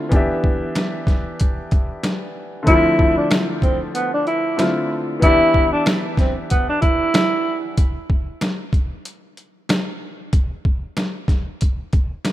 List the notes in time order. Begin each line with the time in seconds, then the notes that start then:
Already playing: D3 A3 C4 E4 F4
0.09 E3 B3 D4, kick, closed hi-hat
0.14 G4 E5
0.44 kick
0.75 snare, closed hi-hat
1.07 kick, snare, closed hi-hat
1.40 kick, closed hi-hat
1.71 kick, closed hi-hat
2.03 snare, closed hi-hat
2.63 D3 A3 C4
2.67 F3 E4, kick, closed hi-hat
2.99 kick
3.17 D4
3.31 snare, closed hi-hat
3.62 C4, kick, closed hi-hat
3.95 B3, closed hi-hat
4.14 D4
4.27 E4, closed hi-hat
4.57 D3 A3 C4 E4 F4, snare, closed hi-hat
5.20 E3 B3 D4 E4, kick, closed hi-hat
5.25 G4 E5
5.54 kick
5.72 D4
5.86 snare, closed hi-hat
6.17 C4, kick, snare, closed hi-hat
6.50 B3, kick, closed hi-hat
6.69 D4
6.81 E4, kick, closed hi-hat
7.14 snare, closed hi-hat
7.77 kick, closed hi-hat
8.10 kick
8.41 snare, closed hi-hat
8.73 kick, closed hi-hat
9.05 closed hi-hat
9.37 closed hi-hat
9.69 snare, closed hi-hat
10.33 kick, closed hi-hat
10.65 kick
10.97 snare, closed hi-hat
11.28 kick, snare, closed hi-hat
11.61 kick, closed hi-hat
11.93 kick, closed hi-hat
12.25 snare, closed hi-hat